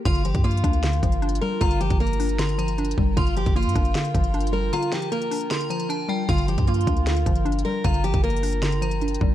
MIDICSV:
0, 0, Header, 1, 7, 480
1, 0, Start_track
1, 0, Key_signature, -2, "minor"
1, 0, Tempo, 389610
1, 67, Time_signature, 4, 2, 24, 8
1, 11516, End_track
2, 0, Start_track
2, 0, Title_t, "Synth bell"
2, 0, Program_c, 0, 98
2, 66, Note_on_c, 0, 84, 98
2, 1937, Note_off_c, 0, 84, 0
2, 1986, Note_on_c, 0, 82, 107
2, 2897, Note_off_c, 0, 82, 0
2, 2947, Note_on_c, 0, 84, 93
2, 3175, Note_off_c, 0, 84, 0
2, 3186, Note_on_c, 0, 82, 83
2, 3863, Note_off_c, 0, 82, 0
2, 3906, Note_on_c, 0, 84, 101
2, 5777, Note_off_c, 0, 84, 0
2, 5825, Note_on_c, 0, 82, 97
2, 6737, Note_off_c, 0, 82, 0
2, 6785, Note_on_c, 0, 84, 91
2, 7014, Note_off_c, 0, 84, 0
2, 7026, Note_on_c, 0, 82, 78
2, 7254, Note_off_c, 0, 82, 0
2, 7266, Note_on_c, 0, 81, 86
2, 7494, Note_off_c, 0, 81, 0
2, 7505, Note_on_c, 0, 79, 84
2, 7734, Note_off_c, 0, 79, 0
2, 7746, Note_on_c, 0, 84, 97
2, 9617, Note_off_c, 0, 84, 0
2, 9665, Note_on_c, 0, 82, 108
2, 10576, Note_off_c, 0, 82, 0
2, 10627, Note_on_c, 0, 84, 88
2, 10855, Note_off_c, 0, 84, 0
2, 10867, Note_on_c, 0, 82, 86
2, 11516, Note_off_c, 0, 82, 0
2, 11516, End_track
3, 0, Start_track
3, 0, Title_t, "Ambient pad"
3, 0, Program_c, 1, 92
3, 68, Note_on_c, 1, 65, 83
3, 68, Note_on_c, 1, 70, 74
3, 68, Note_on_c, 1, 79, 91
3, 3869, Note_off_c, 1, 65, 0
3, 3906, Note_on_c, 1, 65, 81
3, 7698, Note_off_c, 1, 70, 0
3, 7746, Note_on_c, 1, 70, 76
3, 11516, Note_off_c, 1, 65, 0
3, 11516, Note_off_c, 1, 70, 0
3, 11516, Note_off_c, 1, 79, 0
3, 11516, End_track
4, 0, Start_track
4, 0, Title_t, "Steel-string acoustic guitar"
4, 0, Program_c, 2, 25
4, 76, Note_on_c, 2, 65, 99
4, 295, Note_off_c, 2, 65, 0
4, 309, Note_on_c, 2, 67, 75
4, 531, Note_off_c, 2, 67, 0
4, 542, Note_on_c, 2, 65, 94
4, 1695, Note_off_c, 2, 65, 0
4, 1743, Note_on_c, 2, 70, 80
4, 1968, Note_off_c, 2, 70, 0
4, 1980, Note_on_c, 2, 65, 104
4, 2207, Note_off_c, 2, 65, 0
4, 2224, Note_on_c, 2, 67, 88
4, 2449, Note_off_c, 2, 67, 0
4, 2466, Note_on_c, 2, 70, 82
4, 3857, Note_off_c, 2, 70, 0
4, 3903, Note_on_c, 2, 65, 98
4, 4129, Note_off_c, 2, 65, 0
4, 4154, Note_on_c, 2, 67, 79
4, 4374, Note_off_c, 2, 67, 0
4, 4388, Note_on_c, 2, 65, 94
4, 5538, Note_off_c, 2, 65, 0
4, 5580, Note_on_c, 2, 70, 77
4, 5807, Note_off_c, 2, 70, 0
4, 5831, Note_on_c, 2, 65, 102
4, 6053, Note_off_c, 2, 65, 0
4, 6063, Note_on_c, 2, 67, 81
4, 6289, Note_off_c, 2, 67, 0
4, 6304, Note_on_c, 2, 70, 77
4, 7696, Note_off_c, 2, 70, 0
4, 7755, Note_on_c, 2, 65, 100
4, 7975, Note_off_c, 2, 65, 0
4, 7987, Note_on_c, 2, 67, 73
4, 8211, Note_off_c, 2, 67, 0
4, 8220, Note_on_c, 2, 65, 90
4, 9374, Note_off_c, 2, 65, 0
4, 9422, Note_on_c, 2, 70, 80
4, 9648, Note_off_c, 2, 70, 0
4, 9661, Note_on_c, 2, 65, 104
4, 9887, Note_off_c, 2, 65, 0
4, 9905, Note_on_c, 2, 67, 89
4, 10130, Note_off_c, 2, 67, 0
4, 10147, Note_on_c, 2, 70, 85
4, 11516, Note_off_c, 2, 70, 0
4, 11516, End_track
5, 0, Start_track
5, 0, Title_t, "Synth pluck"
5, 0, Program_c, 3, 84
5, 66, Note_on_c, 3, 50, 92
5, 307, Note_on_c, 3, 53, 77
5, 549, Note_on_c, 3, 58, 94
5, 783, Note_on_c, 3, 62, 91
5, 1019, Note_off_c, 3, 50, 0
5, 1034, Note_on_c, 3, 50, 94
5, 1255, Note_off_c, 3, 53, 0
5, 1270, Note_on_c, 3, 53, 83
5, 1490, Note_off_c, 3, 62, 0
5, 1505, Note_on_c, 3, 62, 101
5, 1747, Note_off_c, 3, 58, 0
5, 1750, Note_on_c, 3, 55, 85
5, 1968, Note_off_c, 3, 50, 0
5, 1983, Note_on_c, 3, 50, 99
5, 2211, Note_off_c, 3, 53, 0
5, 2226, Note_on_c, 3, 53, 80
5, 2469, Note_on_c, 3, 58, 93
5, 2690, Note_off_c, 3, 62, 0
5, 2705, Note_on_c, 3, 62, 86
5, 2927, Note_off_c, 3, 50, 0
5, 2942, Note_on_c, 3, 50, 94
5, 2948, Note_off_c, 3, 55, 0
5, 3167, Note_off_c, 3, 53, 0
5, 3182, Note_on_c, 3, 53, 77
5, 3415, Note_off_c, 3, 62, 0
5, 3430, Note_on_c, 3, 62, 86
5, 3668, Note_off_c, 3, 58, 0
5, 3670, Note_on_c, 3, 55, 84
5, 3886, Note_off_c, 3, 50, 0
5, 3901, Note_on_c, 3, 50, 98
5, 3904, Note_off_c, 3, 53, 0
5, 3908, Note_off_c, 3, 55, 0
5, 3908, Note_off_c, 3, 62, 0
5, 4146, Note_on_c, 3, 53, 79
5, 4381, Note_on_c, 3, 58, 91
5, 4624, Note_on_c, 3, 62, 91
5, 4850, Note_off_c, 3, 50, 0
5, 4865, Note_on_c, 3, 50, 88
5, 5097, Note_off_c, 3, 53, 0
5, 5112, Note_on_c, 3, 53, 91
5, 5333, Note_off_c, 3, 62, 0
5, 5348, Note_on_c, 3, 62, 97
5, 5575, Note_on_c, 3, 55, 88
5, 5584, Note_off_c, 3, 58, 0
5, 5807, Note_off_c, 3, 50, 0
5, 5821, Note_on_c, 3, 50, 98
5, 6053, Note_off_c, 3, 53, 0
5, 6068, Note_on_c, 3, 53, 75
5, 6306, Note_on_c, 3, 58, 87
5, 6530, Note_off_c, 3, 62, 0
5, 6545, Note_on_c, 3, 62, 100
5, 6769, Note_off_c, 3, 50, 0
5, 6781, Note_off_c, 3, 55, 0
5, 6784, Note_on_c, 3, 50, 91
5, 7008, Note_off_c, 3, 53, 0
5, 7022, Note_on_c, 3, 53, 87
5, 7244, Note_off_c, 3, 62, 0
5, 7259, Note_on_c, 3, 62, 95
5, 7495, Note_on_c, 3, 55, 95
5, 7506, Note_off_c, 3, 58, 0
5, 7730, Note_off_c, 3, 50, 0
5, 7741, Note_off_c, 3, 55, 0
5, 7743, Note_off_c, 3, 62, 0
5, 7744, Note_off_c, 3, 53, 0
5, 7745, Note_on_c, 3, 50, 92
5, 7986, Note_on_c, 3, 53, 74
5, 8227, Note_on_c, 3, 58, 92
5, 8461, Note_on_c, 3, 62, 88
5, 8696, Note_off_c, 3, 50, 0
5, 8711, Note_on_c, 3, 50, 93
5, 8933, Note_off_c, 3, 53, 0
5, 8948, Note_on_c, 3, 53, 82
5, 9167, Note_off_c, 3, 62, 0
5, 9182, Note_on_c, 3, 62, 97
5, 9427, Note_off_c, 3, 58, 0
5, 9429, Note_on_c, 3, 55, 87
5, 9648, Note_off_c, 3, 50, 0
5, 9663, Note_on_c, 3, 50, 106
5, 9889, Note_off_c, 3, 53, 0
5, 9904, Note_on_c, 3, 53, 80
5, 10148, Note_on_c, 3, 58, 92
5, 10370, Note_off_c, 3, 62, 0
5, 10385, Note_on_c, 3, 62, 86
5, 10608, Note_off_c, 3, 50, 0
5, 10623, Note_on_c, 3, 50, 93
5, 10628, Note_off_c, 3, 55, 0
5, 10845, Note_off_c, 3, 53, 0
5, 10859, Note_on_c, 3, 53, 81
5, 11094, Note_off_c, 3, 62, 0
5, 11109, Note_on_c, 3, 62, 88
5, 11347, Note_off_c, 3, 58, 0
5, 11350, Note_on_c, 3, 55, 87
5, 11516, Note_off_c, 3, 50, 0
5, 11516, Note_off_c, 3, 53, 0
5, 11516, Note_off_c, 3, 55, 0
5, 11516, Note_off_c, 3, 62, 0
5, 11516, End_track
6, 0, Start_track
6, 0, Title_t, "808-style bass"
6, 0, Program_c, 4, 38
6, 67, Note_on_c, 4, 31, 110
6, 412, Note_off_c, 4, 31, 0
6, 427, Note_on_c, 4, 43, 107
6, 772, Note_off_c, 4, 43, 0
6, 786, Note_on_c, 4, 38, 104
6, 1247, Note_off_c, 4, 38, 0
6, 1267, Note_on_c, 4, 31, 102
6, 1727, Note_off_c, 4, 31, 0
6, 1986, Note_on_c, 4, 31, 114
6, 2332, Note_off_c, 4, 31, 0
6, 2347, Note_on_c, 4, 31, 102
6, 3617, Note_off_c, 4, 31, 0
6, 3668, Note_on_c, 4, 31, 105
6, 3897, Note_off_c, 4, 31, 0
6, 3906, Note_on_c, 4, 31, 111
6, 4252, Note_off_c, 4, 31, 0
6, 4267, Note_on_c, 4, 31, 108
6, 4506, Note_on_c, 4, 43, 98
6, 4525, Note_off_c, 4, 31, 0
6, 4620, Note_off_c, 4, 43, 0
6, 4626, Note_on_c, 4, 31, 105
6, 4857, Note_off_c, 4, 31, 0
6, 5106, Note_on_c, 4, 31, 102
6, 5798, Note_off_c, 4, 31, 0
6, 7746, Note_on_c, 4, 31, 118
6, 8092, Note_off_c, 4, 31, 0
6, 8106, Note_on_c, 4, 43, 104
6, 8452, Note_off_c, 4, 43, 0
6, 8466, Note_on_c, 4, 38, 109
6, 8927, Note_off_c, 4, 38, 0
6, 8947, Note_on_c, 4, 31, 103
6, 9407, Note_off_c, 4, 31, 0
6, 9666, Note_on_c, 4, 31, 113
6, 10012, Note_off_c, 4, 31, 0
6, 10026, Note_on_c, 4, 31, 104
6, 11297, Note_off_c, 4, 31, 0
6, 11348, Note_on_c, 4, 31, 103
6, 11516, Note_off_c, 4, 31, 0
6, 11516, End_track
7, 0, Start_track
7, 0, Title_t, "Drums"
7, 67, Note_on_c, 9, 36, 113
7, 68, Note_on_c, 9, 42, 74
7, 186, Note_off_c, 9, 42, 0
7, 186, Note_on_c, 9, 42, 62
7, 190, Note_off_c, 9, 36, 0
7, 307, Note_off_c, 9, 42, 0
7, 307, Note_on_c, 9, 42, 76
7, 426, Note_off_c, 9, 42, 0
7, 426, Note_on_c, 9, 42, 65
7, 427, Note_on_c, 9, 36, 102
7, 547, Note_off_c, 9, 42, 0
7, 547, Note_on_c, 9, 42, 42
7, 550, Note_off_c, 9, 36, 0
7, 627, Note_off_c, 9, 42, 0
7, 627, Note_on_c, 9, 42, 55
7, 707, Note_off_c, 9, 42, 0
7, 707, Note_on_c, 9, 42, 73
7, 786, Note_on_c, 9, 36, 106
7, 789, Note_off_c, 9, 42, 0
7, 789, Note_on_c, 9, 42, 96
7, 902, Note_off_c, 9, 42, 0
7, 902, Note_on_c, 9, 42, 56
7, 909, Note_off_c, 9, 36, 0
7, 1026, Note_off_c, 9, 42, 0
7, 1026, Note_on_c, 9, 42, 80
7, 1027, Note_on_c, 9, 38, 123
7, 1148, Note_off_c, 9, 42, 0
7, 1148, Note_on_c, 9, 42, 61
7, 1150, Note_off_c, 9, 38, 0
7, 1267, Note_on_c, 9, 36, 94
7, 1270, Note_off_c, 9, 42, 0
7, 1270, Note_on_c, 9, 42, 86
7, 1382, Note_off_c, 9, 42, 0
7, 1382, Note_on_c, 9, 42, 61
7, 1390, Note_off_c, 9, 36, 0
7, 1505, Note_off_c, 9, 42, 0
7, 1507, Note_on_c, 9, 42, 43
7, 1587, Note_off_c, 9, 42, 0
7, 1587, Note_on_c, 9, 42, 54
7, 1666, Note_off_c, 9, 42, 0
7, 1666, Note_on_c, 9, 42, 69
7, 1789, Note_off_c, 9, 42, 0
7, 1986, Note_on_c, 9, 36, 111
7, 1986, Note_on_c, 9, 42, 75
7, 2105, Note_off_c, 9, 42, 0
7, 2105, Note_on_c, 9, 42, 62
7, 2109, Note_off_c, 9, 36, 0
7, 2227, Note_off_c, 9, 42, 0
7, 2227, Note_on_c, 9, 42, 75
7, 2345, Note_off_c, 9, 42, 0
7, 2345, Note_on_c, 9, 42, 67
7, 2347, Note_on_c, 9, 36, 107
7, 2466, Note_off_c, 9, 42, 0
7, 2466, Note_on_c, 9, 42, 42
7, 2470, Note_off_c, 9, 36, 0
7, 2546, Note_off_c, 9, 42, 0
7, 2546, Note_on_c, 9, 42, 57
7, 2626, Note_off_c, 9, 42, 0
7, 2626, Note_on_c, 9, 42, 72
7, 2708, Note_on_c, 9, 46, 97
7, 2749, Note_off_c, 9, 42, 0
7, 2822, Note_on_c, 9, 42, 56
7, 2831, Note_off_c, 9, 46, 0
7, 2945, Note_off_c, 9, 42, 0
7, 2945, Note_on_c, 9, 42, 81
7, 2946, Note_on_c, 9, 38, 122
7, 3068, Note_off_c, 9, 42, 0
7, 3068, Note_on_c, 9, 42, 64
7, 3069, Note_off_c, 9, 38, 0
7, 3190, Note_off_c, 9, 42, 0
7, 3190, Note_on_c, 9, 42, 90
7, 3302, Note_off_c, 9, 42, 0
7, 3302, Note_on_c, 9, 42, 60
7, 3426, Note_off_c, 9, 42, 0
7, 3427, Note_on_c, 9, 42, 42
7, 3507, Note_off_c, 9, 42, 0
7, 3507, Note_on_c, 9, 42, 57
7, 3587, Note_off_c, 9, 42, 0
7, 3587, Note_on_c, 9, 42, 70
7, 3668, Note_on_c, 9, 36, 98
7, 3710, Note_off_c, 9, 42, 0
7, 3791, Note_off_c, 9, 36, 0
7, 3906, Note_on_c, 9, 36, 109
7, 3907, Note_on_c, 9, 42, 75
7, 4025, Note_off_c, 9, 42, 0
7, 4025, Note_on_c, 9, 42, 63
7, 4030, Note_off_c, 9, 36, 0
7, 4147, Note_off_c, 9, 42, 0
7, 4147, Note_on_c, 9, 42, 73
7, 4266, Note_off_c, 9, 42, 0
7, 4266, Note_on_c, 9, 42, 65
7, 4267, Note_on_c, 9, 36, 107
7, 4387, Note_off_c, 9, 42, 0
7, 4387, Note_on_c, 9, 42, 40
7, 4390, Note_off_c, 9, 36, 0
7, 4467, Note_off_c, 9, 42, 0
7, 4467, Note_on_c, 9, 42, 55
7, 4546, Note_off_c, 9, 42, 0
7, 4546, Note_on_c, 9, 42, 72
7, 4626, Note_on_c, 9, 36, 106
7, 4629, Note_off_c, 9, 42, 0
7, 4629, Note_on_c, 9, 42, 97
7, 4743, Note_off_c, 9, 42, 0
7, 4743, Note_on_c, 9, 42, 59
7, 4749, Note_off_c, 9, 36, 0
7, 4865, Note_off_c, 9, 42, 0
7, 4865, Note_on_c, 9, 42, 81
7, 4866, Note_on_c, 9, 38, 121
7, 4987, Note_off_c, 9, 42, 0
7, 4987, Note_on_c, 9, 42, 61
7, 4989, Note_off_c, 9, 38, 0
7, 5107, Note_on_c, 9, 36, 96
7, 5109, Note_off_c, 9, 42, 0
7, 5109, Note_on_c, 9, 42, 87
7, 5222, Note_off_c, 9, 42, 0
7, 5222, Note_on_c, 9, 42, 61
7, 5230, Note_off_c, 9, 36, 0
7, 5345, Note_off_c, 9, 42, 0
7, 5347, Note_on_c, 9, 42, 42
7, 5427, Note_off_c, 9, 42, 0
7, 5427, Note_on_c, 9, 42, 58
7, 5506, Note_off_c, 9, 42, 0
7, 5506, Note_on_c, 9, 42, 69
7, 5630, Note_off_c, 9, 42, 0
7, 5828, Note_on_c, 9, 42, 74
7, 5945, Note_off_c, 9, 42, 0
7, 5945, Note_on_c, 9, 42, 61
7, 6066, Note_off_c, 9, 42, 0
7, 6066, Note_on_c, 9, 38, 104
7, 6066, Note_on_c, 9, 42, 77
7, 6186, Note_off_c, 9, 42, 0
7, 6186, Note_on_c, 9, 42, 68
7, 6189, Note_off_c, 9, 38, 0
7, 6306, Note_off_c, 9, 42, 0
7, 6306, Note_on_c, 9, 42, 66
7, 6426, Note_off_c, 9, 42, 0
7, 6426, Note_on_c, 9, 42, 42
7, 6548, Note_on_c, 9, 46, 98
7, 6549, Note_off_c, 9, 42, 0
7, 6662, Note_on_c, 9, 42, 58
7, 6671, Note_off_c, 9, 46, 0
7, 6785, Note_off_c, 9, 42, 0
7, 6785, Note_on_c, 9, 38, 121
7, 6785, Note_on_c, 9, 42, 85
7, 6907, Note_off_c, 9, 42, 0
7, 6907, Note_on_c, 9, 42, 61
7, 6909, Note_off_c, 9, 38, 0
7, 7029, Note_off_c, 9, 42, 0
7, 7029, Note_on_c, 9, 42, 89
7, 7141, Note_off_c, 9, 42, 0
7, 7141, Note_on_c, 9, 42, 60
7, 7264, Note_off_c, 9, 42, 0
7, 7271, Note_on_c, 9, 42, 69
7, 7394, Note_off_c, 9, 42, 0
7, 7746, Note_on_c, 9, 36, 113
7, 7747, Note_on_c, 9, 42, 73
7, 7864, Note_off_c, 9, 42, 0
7, 7864, Note_on_c, 9, 42, 63
7, 7869, Note_off_c, 9, 36, 0
7, 7985, Note_off_c, 9, 42, 0
7, 7985, Note_on_c, 9, 42, 73
7, 8105, Note_off_c, 9, 42, 0
7, 8105, Note_on_c, 9, 42, 68
7, 8106, Note_on_c, 9, 36, 106
7, 8226, Note_off_c, 9, 42, 0
7, 8226, Note_on_c, 9, 42, 40
7, 8229, Note_off_c, 9, 36, 0
7, 8306, Note_off_c, 9, 42, 0
7, 8306, Note_on_c, 9, 42, 56
7, 8386, Note_off_c, 9, 42, 0
7, 8386, Note_on_c, 9, 42, 71
7, 8465, Note_on_c, 9, 36, 106
7, 8468, Note_off_c, 9, 42, 0
7, 8468, Note_on_c, 9, 42, 97
7, 8582, Note_off_c, 9, 42, 0
7, 8582, Note_on_c, 9, 42, 59
7, 8589, Note_off_c, 9, 36, 0
7, 8705, Note_off_c, 9, 42, 0
7, 8706, Note_on_c, 9, 38, 125
7, 8706, Note_on_c, 9, 42, 83
7, 8828, Note_off_c, 9, 42, 0
7, 8828, Note_on_c, 9, 42, 61
7, 8830, Note_off_c, 9, 38, 0
7, 8946, Note_on_c, 9, 36, 95
7, 8950, Note_off_c, 9, 42, 0
7, 8950, Note_on_c, 9, 42, 89
7, 9062, Note_off_c, 9, 42, 0
7, 9062, Note_on_c, 9, 42, 60
7, 9070, Note_off_c, 9, 36, 0
7, 9185, Note_off_c, 9, 42, 0
7, 9187, Note_on_c, 9, 42, 41
7, 9266, Note_off_c, 9, 42, 0
7, 9266, Note_on_c, 9, 42, 58
7, 9346, Note_off_c, 9, 42, 0
7, 9346, Note_on_c, 9, 42, 69
7, 9469, Note_off_c, 9, 42, 0
7, 9666, Note_on_c, 9, 36, 116
7, 9666, Note_on_c, 9, 42, 76
7, 9784, Note_off_c, 9, 42, 0
7, 9784, Note_on_c, 9, 42, 61
7, 9789, Note_off_c, 9, 36, 0
7, 9905, Note_off_c, 9, 42, 0
7, 9905, Note_on_c, 9, 42, 75
7, 10025, Note_off_c, 9, 42, 0
7, 10025, Note_on_c, 9, 42, 66
7, 10026, Note_on_c, 9, 36, 103
7, 10146, Note_off_c, 9, 42, 0
7, 10146, Note_on_c, 9, 42, 42
7, 10150, Note_off_c, 9, 36, 0
7, 10226, Note_off_c, 9, 42, 0
7, 10226, Note_on_c, 9, 42, 55
7, 10306, Note_off_c, 9, 42, 0
7, 10306, Note_on_c, 9, 42, 71
7, 10388, Note_on_c, 9, 46, 97
7, 10429, Note_off_c, 9, 42, 0
7, 10502, Note_on_c, 9, 42, 57
7, 10511, Note_off_c, 9, 46, 0
7, 10625, Note_off_c, 9, 42, 0
7, 10625, Note_on_c, 9, 42, 83
7, 10626, Note_on_c, 9, 38, 120
7, 10747, Note_off_c, 9, 42, 0
7, 10747, Note_on_c, 9, 42, 64
7, 10749, Note_off_c, 9, 38, 0
7, 10869, Note_off_c, 9, 42, 0
7, 10869, Note_on_c, 9, 42, 86
7, 10981, Note_off_c, 9, 42, 0
7, 10981, Note_on_c, 9, 42, 62
7, 11104, Note_off_c, 9, 42, 0
7, 11106, Note_on_c, 9, 42, 42
7, 11186, Note_off_c, 9, 42, 0
7, 11186, Note_on_c, 9, 42, 58
7, 11266, Note_off_c, 9, 42, 0
7, 11266, Note_on_c, 9, 42, 70
7, 11348, Note_on_c, 9, 36, 104
7, 11389, Note_off_c, 9, 42, 0
7, 11471, Note_off_c, 9, 36, 0
7, 11516, End_track
0, 0, End_of_file